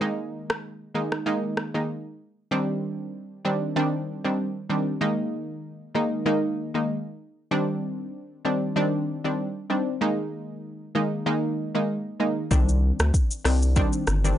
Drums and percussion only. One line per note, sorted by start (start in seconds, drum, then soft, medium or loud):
0.50 cross-stick loud
1.12 cross-stick medium
1.57 cross-stick medium
12.51 kick loud
12.51 shaker medium
12.69 shaker medium
13.00 cross-stick loud
13.00 shaker medium
13.14 kick loud
13.14 shaker medium
13.31 shaker medium
13.45 cross-stick loud
13.45 open hi-hat medium
13.45 shaker medium
13.62 shaker medium
13.76 kick loud
13.76 shaker medium
13.93 shaker medium
14.07 cross-stick medium
14.07 shaker medium
14.25 shaker soft